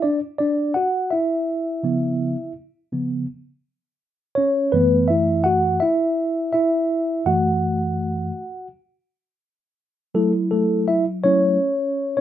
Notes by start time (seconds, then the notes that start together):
0.02 D4 D5
0.38 D4 D5
0.74 F#4 F#5
1.10 E4 E5
1.83 C#3 F3 B3
2.92 C#3 F3 B3
4.35 C#4 C#5
4.72 F#2 E3 A3 B3 B4
5.08 E4 E5
5.44 F#4 F#5
5.80 E4 E5
6.53 E4 E5
7.26 F#2 E3 A3 F#4 F#5
10.14 F#3 A3 E4 A4
10.51 A3 A4
10.88 E4 E5
11.24 F#3 A3 C#4 E4 C#5
12.17 C#5